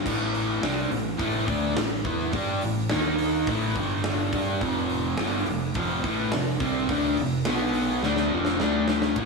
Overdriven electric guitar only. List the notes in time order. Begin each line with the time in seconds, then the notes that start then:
0.06 A2 E3 A3
0.62 C3 G3 C4
0.91 A2 E3
1.18 A2 E3 A3
1.47 D3 A3 D4
1.76 A2 E3
2.05 E3 B3 E4
2.32 G3 D4 G4
2.63 A2 E3
2.90 D#3 A#3 D#4
3.48 A2 E3 A3
3.77 G2 D3 G3
4.33 G3 D4 G4
4.61 F2 C3 F3
5.19 G2 D3 G3
5.47 F2 C3
5.75 F2 C3 F3
6.03 A2 E3 A3
6.33 F2 C3
6.60 C3 G3 C4
6.90 D3 A3 D4
7.19 F2 C3
7.46 B2 F#3 B3
8.04 D3 A3 D4
8.32 F2 C3 F3
8.60 D3 A3 D4
9.17 A2 E3 A3